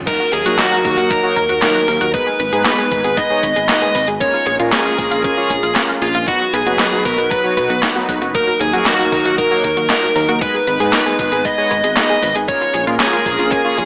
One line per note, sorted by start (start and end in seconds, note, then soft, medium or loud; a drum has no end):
0.07 0.21 F#3 medium
0.07 2.12 F#3 medium
0.07 0.21 A#3 medium
0.07 2.12 A#3 medium
0.07 0.19 D#4 medium
0.07 0.21 D#4 medium
0.07 4.17 D#4 medium
0.07 0.21 F#4 medium
0.07 0.33 A#4 loud
0.07 0.21 A#4 medium
0.07 2.12 A#4 medium
0.07 kick loud
0.07 closed hi-hat loud
0.07 crash loud
0.07 shaker soft
0.20 0.32 F#4 medium
0.20 shaker soft
0.33 0.44 D#2 medium
0.33 0.60 G#4 medium
0.33 0.43 A#4 loud
0.33 closed hi-hat medium
0.33 shaker medium
0.46 0.57 D#1 medium
0.46 0.81 F#3 medium
0.46 0.81 A#3 medium
0.46 0.81 D#4 medium
0.46 0.81 F#4 medium
0.46 0.58 F#4 loud
0.46 0.81 A#4 loud
0.46 closed hi-hat medium
0.46 shaker soft
0.59 0.71 D#4 medium
0.59 1.12 F#4 medium
0.59 snare loud
0.59 clap loud
0.59 closed hi-hat loud
0.59 shaker soft
0.72 0.84 F#4 medium
0.72 shaker soft
0.85 0.96 D#2 medium
0.85 1.20 F#3 medium
0.85 1.20 A#3 medium
0.85 1.20 D#4 medium
0.85 1.20 F#4 medium
0.85 1.20 A#4 loud
0.85 0.95 A#4 loud
0.85 kick loud
0.85 open hi-hat medium
0.85 shaker medium
0.97 1.09 D#2 medium
0.97 1.10 F#4 loud
0.97 closed hi-hat medium
0.97 shaker soft
1.10 1.23 D#4 medium
1.10 1.61 A#4 medium
1.10 kick loud
1.10 closed hi-hat loud
1.10 shaker soft
1.23 1.38 F#3 loud
1.23 1.38 A#3 medium
1.23 1.38 D#4 medium
1.23 1.36 F#4 medium
1.23 1.38 F#4 medium
1.23 1.38 C#5 loud
1.23 shaker soft
1.36 1.48 D#2 loud
1.36 1.47 A#4 loud
1.36 kick medium
1.36 closed hi-hat medium
1.36 shaker medium
1.49 1.61 D#2 medium
1.49 1.62 F#4 loud
1.49 closed hi-hat medium
1.49 shaker soft
1.62 1.76 F#3 medium
1.62 1.76 A#3 medium
1.62 1.74 D#4 medium
1.62 1.76 D#4 medium
1.62 1.76 F#4 medium
1.62 2.10 A#4 loud
1.62 1.76 A#4 medium
1.62 snare loud
1.62 clap loud
1.62 closed hi-hat loud
1.62 shaker soft
1.75 1.87 F#4 medium
1.75 shaker soft
1.88 2.00 D#2 medium
1.88 1.99 A#4 loud
1.88 open hi-hat medium
1.88 shaker medium
2.01 2.13 D#2 medium
2.01 2.13 F#4 loud
2.01 closed hi-hat medium
2.01 shaker soft
2.14 6.24 G#3 medium
2.14 2.28 G#3 medium
2.14 4.19 B3 medium
2.14 2.28 B3 medium
2.14 2.26 D#4 medium
2.14 2.28 D#4 medium
2.14 2.28 G#4 medium
2.14 2.62 B4 loud
2.14 4.19 B4 medium
2.14 2.28 B4 medium
2.14 kick loud
2.14 closed hi-hat loud
2.14 shaker soft
2.27 2.39 G#4 medium
2.27 shaker soft
2.40 2.51 G#1 medium
2.40 2.50 B4 loud
2.40 closed hi-hat medium
2.40 shaker medium
2.53 2.64 G#2 medium
2.53 2.88 G#3 medium
2.53 2.88 B3 medium
2.53 2.88 D#4 medium
2.53 2.65 G#4 loud
2.53 2.88 G#4 medium
2.53 2.88 B4 loud
2.53 closed hi-hat medium
2.53 shaker soft
2.66 2.78 D#4 medium
2.66 3.19 B4 loud
2.66 snare loud
2.66 clap medium
2.66 closed hi-hat loud
2.66 shaker soft
2.78 2.91 G#4 medium
2.78 shaker soft
2.91 3.03 G#1 medium
2.91 3.27 G#3 medium
2.91 3.27 B3 medium
2.91 3.27 D#4 medium
2.91 3.27 G#4 medium
2.91 3.02 B4 loud
2.91 3.27 B4 medium
2.91 kick loud
2.91 open hi-hat medium
2.91 shaker medium
3.04 3.16 G#1 medium
3.04 3.17 G#4 loud
3.04 closed hi-hat medium
3.04 shaker soft
3.17 3.30 D#4 medium
3.17 3.68 D#5 loud
3.17 kick loud
3.17 closed hi-hat loud
3.17 shaker soft
3.30 3.44 G#3 loud
3.30 3.44 B3 medium
3.30 3.44 D#4 medium
3.30 3.43 G#4 medium
3.30 3.44 G#4 medium
3.30 3.44 C#5 loud
3.30 shaker soft
3.43 3.55 G#1 medium
3.43 3.54 B4 loud
3.43 kick medium
3.43 closed hi-hat medium
3.43 shaker medium
3.56 3.68 G#1 medium
3.56 3.68 G#4 loud
3.56 closed hi-hat medium
3.56 shaker soft
3.69 3.83 G#3 medium
3.69 3.83 B3 medium
3.69 3.83 D#4 medium
3.69 3.81 D#4 medium
3.69 3.83 G#4 medium
3.69 3.83 B4 medium
3.69 4.05 D#5 loud
3.69 snare loud
3.69 clap loud
3.69 closed hi-hat loud
3.69 shaker soft
3.82 3.94 G#4 medium
3.82 shaker soft
3.95 4.07 G#1 loud
3.95 4.06 B4 loud
3.95 kick medium
3.95 open hi-hat medium
3.95 shaker medium
4.08 4.19 G#1 medium
4.08 4.20 G#4 loud
4.08 closed hi-hat medium
4.08 shaker soft
4.21 4.35 A#3 medium
4.21 4.35 C#4 medium
4.21 6.26 C#4 medium
4.21 4.33 C#4 medium
4.21 4.35 F4 medium
4.21 6.26 F4 medium
4.21 4.35 G#4 medium
4.21 4.35 A#4 medium
4.21 6.26 A#4 medium
4.21 4.45 C#5 loud
4.21 kick loud
4.21 closed hi-hat loud
4.21 shaker soft
4.34 4.46 F4 medium
4.34 shaker soft
4.47 4.58 A#1 medium
4.47 4.57 G#4 loud
4.47 4.54 C#5 loud
4.47 closed hi-hat medium
4.47 shaker medium
4.60 4.71 A#2 medium
4.60 4.95 A#3 medium
4.60 4.95 C#4 medium
4.60 4.95 F4 medium
4.60 4.72 F4 loud
4.60 4.95 G#4 medium
4.60 4.95 A#4 loud
4.60 closed hi-hat medium
4.60 shaker soft
4.72 4.85 C#4 medium
4.72 5.21 G#4 medium
4.72 snare loud
4.72 clap medium
4.72 closed hi-hat medium
4.72 shaker soft
4.85 4.98 F4 medium
4.85 shaker soft
4.98 5.10 A#1 medium
4.98 5.34 A#3 medium
4.98 5.34 C#4 medium
4.98 5.34 F4 medium
4.98 5.09 G#4 loud
4.98 5.34 G#4 medium
4.98 5.34 A#4 loud
4.98 kick loud
4.98 open hi-hat medium
4.98 shaker medium
5.11 5.23 A#1 medium
5.11 5.24 F4 loud
5.11 closed hi-hat medium
5.11 shaker soft
5.24 5.37 C#4 medium
5.24 5.72 G#4 medium
5.24 kick loud
5.24 closed hi-hat loud
5.24 shaker soft
5.37 5.51 A#3 loud
5.37 5.51 C#4 medium
5.37 5.51 F4 medium
5.37 5.49 F4 medium
5.37 5.51 G#4 medium
5.37 5.51 C#5 loud
5.37 shaker soft
5.50 5.62 A#1 loud
5.50 5.61 G#4 loud
5.50 kick medium
5.50 closed hi-hat medium
5.50 shaker medium
5.63 5.75 A#1 medium
5.63 5.75 F4 loud
5.63 closed hi-hat medium
5.63 shaker soft
5.76 5.90 A#3 medium
5.76 5.88 C#4 medium
5.76 5.90 C#4 medium
5.76 5.90 F4 medium
5.76 5.90 G#4 medium
5.76 5.90 A#4 medium
5.76 snare loud
5.76 clap loud
5.76 closed hi-hat loud
5.76 shaker soft
5.89 6.01 F4 medium
5.89 shaker soft
6.02 6.13 A#1 loud
6.02 6.26 F4 medium
6.02 6.12 G#4 loud
6.02 open hi-hat medium
6.02 shaker medium
6.15 6.26 A#1 medium
6.15 6.27 F4 loud
6.15 closed hi-hat medium
6.15 shaker soft
6.28 6.42 F#3 medium
6.28 10.38 F#3 medium
6.28 6.42 B3 medium
6.28 8.33 B3 medium
6.28 6.40 D#4 medium
6.28 6.42 D#4 medium
6.28 12.44 D#4 medium
6.28 6.42 F#4 medium
6.28 6.54 F#4 medium
6.28 6.42 B4 medium
6.28 8.33 B4 medium
6.28 kick loud
6.28 closed hi-hat medium
6.28 shaker soft
6.40 6.53 F#4 medium
6.40 shaker soft
6.53 6.65 B1 medium
6.53 7.02 G#4 loud
6.53 6.64 B4 loud
6.53 closed hi-hat medium
6.53 shaker medium
6.66 6.78 F#1 medium
6.66 7.02 F#3 medium
6.66 7.02 B3 medium
6.66 7.02 D#4 medium
6.66 7.02 F#4 medium
6.66 6.79 F#4 loud
6.66 7.02 B4 loud
6.66 closed hi-hat medium
6.66 shaker soft
6.79 6.92 D#4 medium
6.79 snare loud
6.79 clap medium
6.79 closed hi-hat medium
6.79 shaker soft
6.92 7.05 F#4 medium
6.92 shaker soft
7.05 7.17 B1 medium
7.05 7.41 F#3 medium
7.05 7.41 B3 medium
7.05 7.41 D#4 medium
7.05 7.41 F#4 medium
7.05 7.31 A#4 loud
7.05 7.41 B4 loud
7.05 7.16 B4 loud
7.05 kick loud
7.05 open hi-hat medium
7.05 shaker medium
7.18 7.30 B1 medium
7.18 7.30 F#4 loud
7.18 closed hi-hat medium
7.18 shaker soft
7.31 7.43 D#4 medium
7.31 7.79 B4 loud
7.31 kick loud
7.31 closed hi-hat medium
7.31 shaker soft
7.44 7.54 F#3 loud
7.44 7.54 B3 medium
7.44 7.54 D#4 medium
7.44 7.56 F#4 medium
7.44 7.54 F#4 medium
7.44 7.54 C#5 loud
7.44 shaker soft
7.57 7.69 B1 loud
7.57 7.71 F#3 medium
7.57 7.71 B3 medium
7.57 7.71 D#4 medium
7.57 7.71 F#4 medium
7.57 7.68 B4 loud
7.57 7.71 B4 loud
7.57 kick medium
7.57 closed hi-hat medium
7.57 shaker medium
7.70 7.81 B1 medium
7.70 7.82 F#4 loud
7.70 closed hi-hat medium
7.70 shaker soft
7.83 7.95 D#4 medium
7.83 snare loud
7.83 clap loud
7.83 closed hi-hat medium
7.83 shaker soft
7.96 8.31 F#3 medium
7.96 8.32 B3 medium
7.96 8.31 D#4 medium
7.96 8.08 F#4 medium
7.96 8.32 F#4 medium
7.96 8.32 B4 medium
7.96 shaker soft
8.09 8.20 B1 loud
8.09 8.19 B4 loud
8.09 kick medium
8.09 open hi-hat medium
8.09 shaker medium
8.22 8.33 F#1 medium
8.22 8.34 F#4 loud
8.22 closed hi-hat medium
8.22 shaker soft
8.35 8.49 F#3 medium
8.35 10.39 A#3 medium
8.35 8.49 A#3 medium
8.35 8.47 D#4 medium
8.35 8.49 D#4 medium
8.35 8.49 F#4 medium
8.35 10.39 A#4 medium
8.35 8.49 A#4 medium
8.35 8.59 A#4 loud
8.35 kick loud
8.35 closed hi-hat medium
8.35 shaker soft
8.48 8.60 F#4 medium
8.48 shaker soft
8.60 8.72 D#2 loud
8.60 8.87 G#4 medium
8.60 8.71 A#4 loud
8.60 closed hi-hat medium
8.60 shaker medium
8.73 8.85 D#1 medium
8.73 9.09 F#3 medium
8.73 9.09 A#3 medium
8.73 9.09 D#4 medium
8.73 8.86 F#4 loud
8.73 9.09 F#4 medium
8.73 9.09 A#4 loud
8.73 closed hi-hat medium
8.73 shaker soft
8.86 8.99 D#4 medium
8.86 9.35 F#4 medium
8.86 snare loud
8.86 clap medium
8.86 closed hi-hat medium
8.86 shaker soft
8.99 9.12 F#4 medium
8.99 shaker soft
9.12 9.24 D#2 medium
9.12 9.48 F#3 medium
9.12 9.48 A#3 medium
9.12 9.48 D#4 medium
9.12 9.48 F#4 medium
9.12 9.23 A#4 loud
9.12 9.48 A#4 loud
9.12 kick loud
9.12 open hi-hat medium
9.12 shaker medium
9.25 9.37 D#2 medium
9.25 9.37 F#4 loud
9.25 closed hi-hat medium
9.25 shaker soft
9.38 9.50 D#4 medium
9.38 9.89 A#4 loud
9.38 kick loud
9.38 closed hi-hat medium
9.38 shaker soft
9.51 9.65 F#3 loud
9.51 9.65 A#3 medium
9.51 9.65 D#4 medium
9.51 9.63 F#4 medium
9.51 9.65 F#4 medium
9.51 9.65 C#5 loud
9.51 shaker soft
9.64 9.76 D#2 medium
9.64 9.75 A#4 loud
9.64 kick medium
9.64 closed hi-hat medium
9.64 shaker medium
9.77 9.88 D#2 medium
9.77 9.89 F#4 loud
9.77 closed hi-hat medium
9.77 shaker soft
9.90 10.04 F#3 medium
9.90 10.04 A#3 medium
9.90 10.04 D#4 medium
9.90 10.02 D#4 medium
9.90 10.04 F#4 medium
9.90 10.04 A#4 medium
9.90 10.38 A#4 loud
9.90 snare loud
9.90 clap medium
9.90 closed hi-hat medium
9.90 shaker soft
10.03 10.15 F#4 medium
10.03 shaker soft
10.16 10.27 D#2 loud
10.16 10.26 A#4 loud
10.16 open hi-hat medium
10.16 shaker medium
10.29 10.40 D#2 medium
10.29 10.41 F#4 loud
10.29 closed hi-hat medium
10.29 shaker soft
10.41 13.85 G#3 medium
10.41 10.56 G#3 medium
10.41 10.56 B3 medium
10.41 12.46 B3 medium
10.41 10.54 D#4 medium
10.41 10.56 D#4 medium
10.41 10.56 G#4 medium
10.41 10.56 B4 medium
10.41 12.46 B4 medium
10.41 10.92 B4 loud
10.41 kick loud
10.41 closed hi-hat medium
10.41 shaker soft
10.54 10.67 G#4 medium
10.54 shaker soft
10.67 10.79 G#1 loud
10.67 10.78 B4 loud
10.67 closed hi-hat medium
10.67 shaker medium
10.80 10.92 G#2 medium
10.80 11.16 G#3 medium
10.80 11.16 B3 medium
10.80 11.16 D#4 medium
10.80 10.93 G#4 loud
10.80 11.16 G#4 medium
10.80 11.16 B4 loud
10.80 closed hi-hat medium
10.80 shaker soft
10.93 11.06 D#4 medium
10.93 11.47 B4 loud
10.93 snare loud
10.93 clap loud
10.93 closed hi-hat medium
10.93 shaker soft
11.06 11.18 G#4 medium
11.06 shaker soft
11.19 11.31 G#1 medium
11.19 11.55 G#3 medium
11.19 11.55 B3 medium
11.19 11.55 D#4 medium
11.19 11.55 G#4 medium
11.19 11.55 B4 medium
11.19 11.30 B4 loud
11.19 kick loud
11.19 open hi-hat medium
11.19 shaker medium
11.32 11.44 G#1 medium
11.32 11.44 G#4 loud
11.32 closed hi-hat medium
11.32 shaker soft
11.45 11.57 D#4 medium
11.45 11.96 D#5 loud
11.45 kick loud
11.45 closed hi-hat medium
11.45 shaker soft
11.58 11.72 G#3 loud
11.58 11.72 B3 medium
11.58 11.72 D#4 medium
11.58 11.72 G#4 medium
11.58 11.70 G#4 medium
11.58 11.72 C#5 loud
11.58 shaker soft
11.71 11.82 G#1 loud
11.71 11.81 B4 loud
11.71 kick medium
11.71 closed hi-hat medium
11.71 shaker medium
11.84 11.95 G#1 medium
11.84 11.96 G#4 loud
11.84 closed hi-hat medium
11.84 shaker soft
11.97 12.11 G#3 medium
11.97 12.11 B3 medium
11.97 12.11 D#4 medium
11.97 12.09 D#4 medium
11.97 12.11 G#4 medium
11.97 12.11 B4 medium
11.97 12.33 D#5 loud
11.97 snare loud
11.97 clap loud
11.97 closed hi-hat medium
11.97 shaker soft
12.10 12.22 G#4 medium
12.10 shaker soft
12.23 12.34 G#1 loud
12.23 12.33 B4 loud
12.23 kick medium
12.23 open hi-hat medium
12.23 shaker medium
12.35 12.47 G#1 medium
12.35 12.48 G#4 loud
12.35 closed hi-hat medium
12.35 shaker soft
12.48 12.63 A#3 medium
12.48 13.85 C#4 medium
12.48 12.63 C#4 medium
12.48 12.61 C#4 medium
12.48 13.85 F4 medium
12.48 12.63 F4 medium
12.48 12.63 G#4 medium
12.48 13.85 A#4 medium
12.48 12.63 A#4 medium
12.48 12.73 C#5 loud
12.48 kick loud
12.48 closed hi-hat medium
12.48 shaker soft
12.61 12.74 F4 medium
12.61 shaker soft
12.74 12.86 A#1 medium
12.74 12.85 G#4 loud
12.74 12.81 C#5 loud
12.74 closed hi-hat medium
12.74 shaker medium
12.87 12.99 A#2 medium
12.87 13.23 A#3 loud
12.87 13.23 C#4 medium
12.87 13.23 F4 medium
12.87 12.99 F4 loud
12.87 13.23 G#4 medium
12.87 13.23 A#4 loud
12.87 closed hi-hat medium
12.87 shaker soft
13.00 13.12 C#4 medium
13.00 13.51 G#4 loud
13.00 snare loud
13.00 clap loud
13.00 closed hi-hat medium
13.00 shaker soft
13.13 13.25 F4 medium
13.13 shaker soft
13.26 13.38 A#1 medium
13.26 13.62 A#3 medium
13.26 13.62 C#4 medium
13.26 13.62 F4 medium
13.26 13.37 G#4 loud
13.26 13.62 G#4 medium
13.26 13.62 A#4 loud
13.26 kick loud
13.26 open hi-hat medium
13.26 shaker medium
13.39 13.50 A#1 medium
13.39 13.51 F4 loud
13.39 closed hi-hat medium
13.39 shaker soft
13.52 13.64 C#4 medium
13.52 13.85 G#4 loud
13.52 kick loud
13.52 closed hi-hat loud
13.52 shaker soft
13.65 13.79 A#3 loud
13.65 13.79 C#4 medium
13.65 13.79 F4 medium
13.65 13.77 F4 medium
13.65 13.79 G#4 medium
13.65 13.79 C#5 loud
13.65 shaker soft
13.78 13.85 A#1 loud
13.78 13.85 G#4 loud
13.78 kick medium
13.78 closed hi-hat medium
13.78 shaker medium